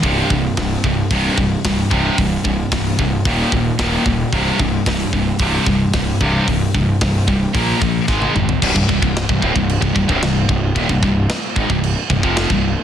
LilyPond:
<<
  \new Staff \with { instrumentName = "Distorted electric guitar" } { \clef bass \time 4/4 \key c \minor \tempo 4 = 112 <c, g, c>8 <c, g,>8 <c, g,>8 <c, g,>8 <c, g, c>8 <c, g,>8 <c, g,>8 <c, g, c>8 | <c, g,>8 <c, g,>8 <c, g,>8 <c, g,>8 <ees, bes, ees>8 <ees, bes,>8 <ees, bes, ees>8 <ees, bes,>8 | <c, g, c>8 <c, g,>8 <c, g,>8 <c, g,>8 <c, g, c>8 <c, g,>8 <c, g,>8 <c, g, c>8 | <c, g,>8 <c, g,>8 <c, g,>8 <c, g,>8 <bes, f bes>8 <bes, f>8 <aes, ees aes>8 <aes, ees>8 |
<c, g,>16 <c, g,>16 <c, g,>16 <c, g,>8 <c, g,>16 <d, a,>16 <c, g,>8 <c, g,>16 <c, g,>16 <c, g,>16 <c, g,>8 <c, g,>8 | <ees, bes,>16 <c, g,>16 <c, g,>8 r8 <aes, ees>16 <c, g,>8 r16 <c, g,>16 <f, c f>8 <c, g,>8 r16 | }
  \new Staff \with { instrumentName = "Fingered electric bass" } { \clef bass \time 4/4 \key c \minor c,,8 c,,8 c,,8 c,,8 c,,8 c,,8 c,,8 c,,8 | c,,8 c,,8 c,,8 c,,8 ees,,8 ees,,8 ees,,8 ees,,8 | c,,8 c,,8 c,,8 c,,8 c,,8 c,,8 c,,8 c,,8 | c,,8 c,,8 c,,8 c,,8 bes,,8 bes,,8 aes,,8 aes,,8 |
c,,16 c,,16 c,,16 c,,8 c,,16 d,,16 c,,8 c,,16 c,,16 c,,16 c,,8 c,,8 | ees,,16 c,,16 c,,8 r8 aes,,16 c,,8 r16 c,,16 f,,8 c,,8 r16 | }
  \new DrumStaff \with { instrumentName = "Drums" } \drummode { \time 4/4 <hho bd>8 bd8 <hho bd sn>8 bd8 <hho bd>8 bd8 <hho bd sn>8 bd8 | <hho bd>8 bd8 <hho bd sn>8 bd8 <hho bd>8 bd8 <hho bd sn>8 bd8 | <hho bd>8 bd8 <hho bd sn>8 bd8 <hho bd>8 bd8 <hho bd sn>8 bd8 | <hho bd>8 bd8 <hho bd sn>8 bd8 <hho bd>8 bd8 <bd sn>16 tommh16 toml16 tomfh16 |
<cymc bd>16 bd16 bd16 bd16 <cymc sn>16 bd16 bd16 bd16 cymc16 bd16 bd16 bd16 <cymc sn>8 bd8 | <cymc bd>16 bd16 bd8 <cymc sn>8 bd16 bd16 cymc8 bd16 bd16 <cymc sn>16 bd8. | }
>>